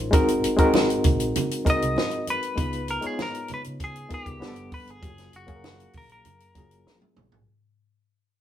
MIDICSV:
0, 0, Header, 1, 6, 480
1, 0, Start_track
1, 0, Tempo, 611808
1, 100, Time_signature, 4, 2, 24, 8
1, 6597, End_track
2, 0, Start_track
2, 0, Title_t, "Clean electric guitar"
2, 0, Program_c, 0, 27
2, 1333, Note_on_c, 0, 75, 97
2, 1804, Note_off_c, 0, 75, 0
2, 1807, Note_on_c, 0, 71, 108
2, 2276, Note_off_c, 0, 71, 0
2, 2279, Note_on_c, 0, 70, 87
2, 2393, Note_off_c, 0, 70, 0
2, 2405, Note_on_c, 0, 68, 88
2, 2516, Note_off_c, 0, 68, 0
2, 2528, Note_on_c, 0, 70, 90
2, 2761, Note_off_c, 0, 70, 0
2, 2775, Note_on_c, 0, 71, 88
2, 2835, Note_off_c, 0, 71, 0
2, 3012, Note_on_c, 0, 68, 91
2, 3243, Note_off_c, 0, 68, 0
2, 3248, Note_on_c, 0, 67, 87
2, 3715, Note_off_c, 0, 67, 0
2, 3718, Note_on_c, 0, 71, 88
2, 3847, Note_off_c, 0, 71, 0
2, 3847, Note_on_c, 0, 68, 84
2, 4204, Note_off_c, 0, 68, 0
2, 4206, Note_on_c, 0, 66, 83
2, 4687, Note_off_c, 0, 66, 0
2, 4688, Note_on_c, 0, 70, 85
2, 4793, Note_off_c, 0, 70, 0
2, 4802, Note_on_c, 0, 70, 72
2, 5480, Note_off_c, 0, 70, 0
2, 6597, End_track
3, 0, Start_track
3, 0, Title_t, "Reed electric piano"
3, 0, Program_c, 1, 4
3, 0, Control_c, 1, 64, 127
3, 0, Note_on_c, 1, 56, 62
3, 0, Note_on_c, 1, 61, 58
3, 0, Note_on_c, 1, 63, 60
3, 0, Note_on_c, 1, 65, 57
3, 0, Note_on_c, 1, 70, 59
3, 0, Note_on_c, 1, 72, 74
3, 85, Note_off_c, 1, 72, 0
3, 86, Note_off_c, 1, 56, 0
3, 86, Note_on_c, 1, 56, 83
3, 96, Note_off_c, 1, 63, 0
3, 96, Note_on_c, 1, 60, 78
3, 96, Note_on_c, 1, 63, 77
3, 102, Note_on_c, 1, 66, 79
3, 108, Note_off_c, 1, 70, 0
3, 108, Note_on_c, 1, 70, 101
3, 109, Control_c, 1, 64, 0
3, 111, Note_off_c, 1, 61, 0
3, 115, Note_off_c, 1, 65, 0
3, 246, Control_c, 1, 64, 127
3, 433, Note_off_c, 1, 56, 0
3, 438, Note_off_c, 1, 60, 0
3, 438, Note_off_c, 1, 63, 0
3, 441, Note_off_c, 1, 66, 0
3, 444, Note_off_c, 1, 70, 0
3, 445, Note_on_c, 1, 56, 92
3, 448, Note_on_c, 1, 60, 75
3, 457, Note_on_c, 1, 63, 81
3, 462, Note_on_c, 1, 66, 82
3, 466, Note_on_c, 1, 70, 101
3, 1246, Note_off_c, 1, 56, 0
3, 1248, Note_off_c, 1, 60, 0
3, 1253, Note_off_c, 1, 63, 0
3, 1255, Note_off_c, 1, 66, 0
3, 1257, Note_off_c, 1, 70, 0
3, 1293, Note_on_c, 1, 56, 71
3, 1296, Note_on_c, 1, 60, 62
3, 1299, Note_on_c, 1, 63, 60
3, 1307, Note_on_c, 1, 70, 79
3, 1308, Note_on_c, 1, 66, 58
3, 1977, Note_off_c, 1, 56, 0
3, 1979, Note_off_c, 1, 60, 0
3, 1980, Note_off_c, 1, 63, 0
3, 1984, Note_off_c, 1, 70, 0
3, 1985, Note_off_c, 1, 66, 0
3, 2004, Note_on_c, 1, 56, 71
3, 2009, Note_on_c, 1, 59, 64
3, 2012, Note_on_c, 1, 63, 64
3, 2016, Note_on_c, 1, 65, 67
3, 2020, Note_on_c, 1, 71, 79
3, 2031, Control_c, 1, 64, 0
3, 2185, Control_c, 1, 64, 127
3, 2352, Note_off_c, 1, 56, 0
3, 2355, Note_off_c, 1, 59, 0
3, 2356, Note_off_c, 1, 63, 0
3, 2358, Note_off_c, 1, 65, 0
3, 2360, Note_off_c, 1, 71, 0
3, 2362, Note_on_c, 1, 56, 74
3, 2369, Note_on_c, 1, 59, 67
3, 2370, Note_on_c, 1, 63, 66
3, 2376, Note_on_c, 1, 65, 65
3, 2381, Note_on_c, 1, 73, 81
3, 3165, Note_off_c, 1, 56, 0
3, 3168, Note_off_c, 1, 59, 0
3, 3169, Note_off_c, 1, 63, 0
3, 3172, Note_off_c, 1, 65, 0
3, 3175, Note_off_c, 1, 73, 0
3, 3209, Note_on_c, 1, 56, 70
3, 3210, Note_on_c, 1, 59, 61
3, 3216, Note_on_c, 1, 65, 56
3, 3218, Note_on_c, 1, 63, 60
3, 3225, Note_on_c, 1, 70, 66
3, 3443, Note_off_c, 1, 59, 0
3, 3447, Note_on_c, 1, 55, 75
3, 3453, Note_on_c, 1, 59, 76
3, 3454, Note_off_c, 1, 56, 0
3, 3458, Note_off_c, 1, 65, 0
3, 3458, Note_on_c, 1, 62, 75
3, 3459, Note_off_c, 1, 63, 0
3, 3460, Note_on_c, 1, 78, 70
3, 3462, Note_on_c, 1, 67, 70
3, 3463, Note_off_c, 1, 70, 0
3, 3470, Control_c, 1, 64, 0
3, 3512, Note_off_c, 1, 67, 0
3, 3517, Note_on_c, 1, 69, 84
3, 3598, Control_c, 1, 64, 127
3, 3908, Note_off_c, 1, 55, 0
3, 3910, Note_off_c, 1, 59, 0
3, 3913, Note_off_c, 1, 62, 0
3, 3914, Note_off_c, 1, 78, 0
3, 3930, Note_on_c, 1, 54, 73
3, 3933, Note_on_c, 1, 58, 66
3, 3941, Note_on_c, 1, 61, 66
3, 3942, Note_off_c, 1, 69, 0
3, 3946, Note_on_c, 1, 65, 62
3, 3951, Control_c, 1, 64, 0
3, 3951, Note_on_c, 1, 67, 66
3, 3996, Note_off_c, 1, 67, 0
3, 4003, Note_on_c, 1, 68, 74
3, 4077, Control_c, 1, 64, 127
3, 4275, Note_off_c, 1, 54, 0
3, 4277, Note_off_c, 1, 58, 0
3, 4281, Note_off_c, 1, 61, 0
3, 4284, Note_off_c, 1, 65, 0
3, 4290, Note_on_c, 1, 54, 72
3, 4290, Note_on_c, 1, 58, 71
3, 4299, Note_off_c, 1, 68, 0
3, 4300, Note_on_c, 1, 61, 65
3, 4304, Note_on_c, 1, 77, 68
3, 4309, Note_on_c, 1, 68, 67
3, 4355, Note_off_c, 1, 68, 0
3, 4360, Note_on_c, 1, 70, 78
3, 5090, Note_off_c, 1, 54, 0
3, 5090, Note_off_c, 1, 58, 0
3, 5095, Note_off_c, 1, 61, 0
3, 5097, Note_off_c, 1, 77, 0
3, 5124, Note_off_c, 1, 70, 0
3, 5138, Note_on_c, 1, 54, 69
3, 5143, Note_on_c, 1, 58, 57
3, 5146, Note_on_c, 1, 61, 63
3, 5149, Note_on_c, 1, 65, 60
3, 5157, Note_on_c, 1, 68, 70
3, 5820, Note_off_c, 1, 54, 0
3, 5823, Note_off_c, 1, 58, 0
3, 5824, Note_off_c, 1, 61, 0
3, 5826, Note_off_c, 1, 65, 0
3, 5830, Note_off_c, 1, 68, 0
3, 5871, Control_c, 1, 64, 0
3, 6597, End_track
4, 0, Start_track
4, 0, Title_t, "Fingered electric bass"
4, 0, Program_c, 2, 33
4, 0, Note_on_c, 2, 33, 76
4, 85, Note_off_c, 2, 33, 0
4, 347, Note_on_c, 2, 32, 90
4, 748, Note_off_c, 2, 32, 0
4, 825, Note_on_c, 2, 34, 89
4, 1025, Note_off_c, 2, 34, 0
4, 1432, Note_on_c, 2, 36, 86
4, 1528, Note_off_c, 2, 36, 0
4, 2025, Note_on_c, 2, 37, 93
4, 2326, Note_off_c, 2, 37, 0
4, 2753, Note_on_c, 2, 44, 97
4, 2849, Note_off_c, 2, 44, 0
4, 2869, Note_on_c, 2, 49, 94
4, 3168, Note_off_c, 2, 49, 0
4, 3348, Note_on_c, 2, 37, 77
4, 3446, Note_off_c, 2, 37, 0
4, 3463, Note_on_c, 2, 31, 87
4, 3584, Note_off_c, 2, 31, 0
4, 3584, Note_on_c, 2, 30, 82
4, 3683, Note_off_c, 2, 30, 0
4, 3819, Note_on_c, 2, 31, 87
4, 3921, Note_off_c, 2, 31, 0
4, 3946, Note_on_c, 2, 30, 101
4, 4146, Note_off_c, 2, 30, 0
4, 4185, Note_on_c, 2, 30, 92
4, 4587, Note_off_c, 2, 30, 0
4, 4668, Note_on_c, 2, 34, 91
4, 4867, Note_off_c, 2, 34, 0
4, 4909, Note_on_c, 2, 42, 99
4, 5108, Note_off_c, 2, 42, 0
4, 5147, Note_on_c, 2, 30, 87
4, 5384, Note_off_c, 2, 30, 0
4, 5384, Note_on_c, 2, 32, 74
4, 5484, Note_off_c, 2, 32, 0
4, 5630, Note_on_c, 2, 34, 78
4, 5727, Note_off_c, 2, 34, 0
4, 5752, Note_on_c, 2, 34, 78
4, 5848, Note_off_c, 2, 34, 0
4, 6597, End_track
5, 0, Start_track
5, 0, Title_t, "Muted fingered electric bass strokes"
5, 1305, Note_on_c, 9, 29, 47
5, 1384, Note_off_c, 9, 29, 0
5, 2389, Note_on_c, 9, 29, 52
5, 2468, Note_off_c, 9, 29, 0
5, 3226, Note_on_c, 9, 29, 50
5, 3304, Note_off_c, 9, 29, 0
5, 6597, End_track
6, 0, Start_track
6, 0, Title_t, "Drums"
6, 102, Note_on_c, 9, 42, 89
6, 102, Note_on_c, 9, 62, 57
6, 103, Note_on_c, 9, 36, 104
6, 180, Note_off_c, 9, 62, 0
6, 181, Note_off_c, 9, 36, 0
6, 181, Note_off_c, 9, 42, 0
6, 223, Note_on_c, 9, 42, 51
6, 301, Note_off_c, 9, 42, 0
6, 344, Note_on_c, 9, 42, 75
6, 423, Note_off_c, 9, 42, 0
6, 458, Note_on_c, 9, 42, 48
6, 460, Note_on_c, 9, 36, 78
6, 537, Note_off_c, 9, 42, 0
6, 539, Note_off_c, 9, 36, 0
6, 578, Note_on_c, 9, 63, 84
6, 590, Note_on_c, 9, 38, 94
6, 657, Note_off_c, 9, 63, 0
6, 669, Note_off_c, 9, 38, 0
6, 707, Note_on_c, 9, 42, 48
6, 785, Note_off_c, 9, 42, 0
6, 816, Note_on_c, 9, 42, 70
6, 818, Note_on_c, 9, 64, 70
6, 823, Note_on_c, 9, 36, 90
6, 895, Note_off_c, 9, 42, 0
6, 896, Note_off_c, 9, 64, 0
6, 902, Note_off_c, 9, 36, 0
6, 940, Note_on_c, 9, 42, 50
6, 1018, Note_off_c, 9, 42, 0
6, 1064, Note_on_c, 9, 42, 81
6, 1068, Note_on_c, 9, 62, 52
6, 1068, Note_on_c, 9, 64, 70
6, 1142, Note_off_c, 9, 42, 0
6, 1147, Note_off_c, 9, 62, 0
6, 1147, Note_off_c, 9, 64, 0
6, 1187, Note_on_c, 9, 42, 52
6, 1266, Note_off_c, 9, 42, 0
6, 1304, Note_on_c, 9, 36, 81
6, 1304, Note_on_c, 9, 64, 67
6, 1307, Note_on_c, 9, 42, 69
6, 1382, Note_off_c, 9, 36, 0
6, 1382, Note_off_c, 9, 64, 0
6, 1386, Note_off_c, 9, 42, 0
6, 1430, Note_on_c, 9, 42, 52
6, 1509, Note_off_c, 9, 42, 0
6, 1541, Note_on_c, 9, 63, 60
6, 1552, Note_on_c, 9, 38, 99
6, 1619, Note_off_c, 9, 63, 0
6, 1631, Note_off_c, 9, 38, 0
6, 1656, Note_on_c, 9, 42, 42
6, 1735, Note_off_c, 9, 42, 0
6, 1783, Note_on_c, 9, 42, 67
6, 1783, Note_on_c, 9, 63, 54
6, 1861, Note_off_c, 9, 42, 0
6, 1862, Note_off_c, 9, 63, 0
6, 1903, Note_on_c, 9, 42, 51
6, 1982, Note_off_c, 9, 42, 0
6, 2021, Note_on_c, 9, 36, 108
6, 2021, Note_on_c, 9, 42, 87
6, 2024, Note_on_c, 9, 62, 60
6, 2099, Note_off_c, 9, 36, 0
6, 2099, Note_off_c, 9, 42, 0
6, 2102, Note_off_c, 9, 62, 0
6, 2140, Note_on_c, 9, 42, 47
6, 2218, Note_off_c, 9, 42, 0
6, 2259, Note_on_c, 9, 42, 75
6, 2338, Note_off_c, 9, 42, 0
6, 2371, Note_on_c, 9, 42, 51
6, 2449, Note_off_c, 9, 42, 0
6, 2501, Note_on_c, 9, 38, 94
6, 2503, Note_on_c, 9, 63, 85
6, 2580, Note_off_c, 9, 38, 0
6, 2581, Note_off_c, 9, 63, 0
6, 2625, Note_on_c, 9, 42, 53
6, 2704, Note_off_c, 9, 42, 0
6, 2732, Note_on_c, 9, 42, 74
6, 2745, Note_on_c, 9, 64, 68
6, 2811, Note_off_c, 9, 42, 0
6, 2823, Note_off_c, 9, 64, 0
6, 2859, Note_on_c, 9, 42, 52
6, 2937, Note_off_c, 9, 42, 0
6, 2982, Note_on_c, 9, 36, 78
6, 2982, Note_on_c, 9, 42, 85
6, 2989, Note_on_c, 9, 62, 50
6, 3060, Note_off_c, 9, 36, 0
6, 3060, Note_off_c, 9, 42, 0
6, 3067, Note_off_c, 9, 62, 0
6, 3104, Note_on_c, 9, 42, 51
6, 3182, Note_off_c, 9, 42, 0
6, 3219, Note_on_c, 9, 42, 73
6, 3222, Note_on_c, 9, 36, 84
6, 3298, Note_off_c, 9, 42, 0
6, 3301, Note_off_c, 9, 36, 0
6, 3344, Note_on_c, 9, 36, 84
6, 3345, Note_on_c, 9, 42, 52
6, 3422, Note_off_c, 9, 36, 0
6, 3424, Note_off_c, 9, 42, 0
6, 3466, Note_on_c, 9, 63, 53
6, 3469, Note_on_c, 9, 38, 92
6, 3544, Note_off_c, 9, 63, 0
6, 3547, Note_off_c, 9, 38, 0
6, 3577, Note_on_c, 9, 42, 47
6, 3656, Note_off_c, 9, 42, 0
6, 3701, Note_on_c, 9, 46, 47
6, 3704, Note_on_c, 9, 36, 98
6, 3704, Note_on_c, 9, 63, 56
6, 3780, Note_off_c, 9, 46, 0
6, 3783, Note_off_c, 9, 36, 0
6, 3783, Note_off_c, 9, 63, 0
6, 3825, Note_on_c, 9, 42, 50
6, 3903, Note_off_c, 9, 42, 0
6, 3943, Note_on_c, 9, 36, 112
6, 3943, Note_on_c, 9, 42, 85
6, 3948, Note_on_c, 9, 62, 57
6, 4021, Note_off_c, 9, 42, 0
6, 4022, Note_off_c, 9, 36, 0
6, 4027, Note_off_c, 9, 62, 0
6, 4064, Note_on_c, 9, 42, 49
6, 4071, Note_on_c, 9, 38, 32
6, 4143, Note_off_c, 9, 42, 0
6, 4149, Note_off_c, 9, 38, 0
6, 4182, Note_on_c, 9, 42, 68
6, 4191, Note_on_c, 9, 62, 29
6, 4261, Note_off_c, 9, 42, 0
6, 4269, Note_off_c, 9, 62, 0
6, 4297, Note_on_c, 9, 42, 52
6, 4301, Note_on_c, 9, 36, 86
6, 4376, Note_off_c, 9, 42, 0
6, 4379, Note_off_c, 9, 36, 0
6, 4425, Note_on_c, 9, 63, 81
6, 4427, Note_on_c, 9, 38, 98
6, 4504, Note_off_c, 9, 63, 0
6, 4505, Note_off_c, 9, 38, 0
6, 4550, Note_on_c, 9, 42, 47
6, 4628, Note_off_c, 9, 42, 0
6, 4655, Note_on_c, 9, 46, 50
6, 4664, Note_on_c, 9, 36, 84
6, 4665, Note_on_c, 9, 64, 72
6, 4734, Note_off_c, 9, 46, 0
6, 4742, Note_off_c, 9, 36, 0
6, 4744, Note_off_c, 9, 64, 0
6, 4781, Note_on_c, 9, 42, 54
6, 4860, Note_off_c, 9, 42, 0
6, 4902, Note_on_c, 9, 42, 81
6, 4908, Note_on_c, 9, 62, 50
6, 4908, Note_on_c, 9, 64, 70
6, 4981, Note_off_c, 9, 42, 0
6, 4986, Note_off_c, 9, 62, 0
6, 4986, Note_off_c, 9, 64, 0
6, 5024, Note_on_c, 9, 42, 49
6, 5102, Note_off_c, 9, 42, 0
6, 5139, Note_on_c, 9, 42, 72
6, 5143, Note_on_c, 9, 36, 76
6, 5147, Note_on_c, 9, 64, 63
6, 5218, Note_off_c, 9, 42, 0
6, 5221, Note_off_c, 9, 36, 0
6, 5225, Note_off_c, 9, 64, 0
6, 5264, Note_on_c, 9, 42, 46
6, 5343, Note_off_c, 9, 42, 0
6, 5389, Note_on_c, 9, 38, 55
6, 5391, Note_on_c, 9, 63, 53
6, 5468, Note_off_c, 9, 38, 0
6, 5470, Note_off_c, 9, 63, 0
6, 5505, Note_on_c, 9, 48, 59
6, 5583, Note_off_c, 9, 48, 0
6, 5622, Note_on_c, 9, 45, 89
6, 5630, Note_on_c, 9, 63, 64
6, 5701, Note_off_c, 9, 45, 0
6, 5708, Note_off_c, 9, 63, 0
6, 5743, Note_on_c, 9, 43, 85
6, 5822, Note_off_c, 9, 43, 0
6, 6597, End_track
0, 0, End_of_file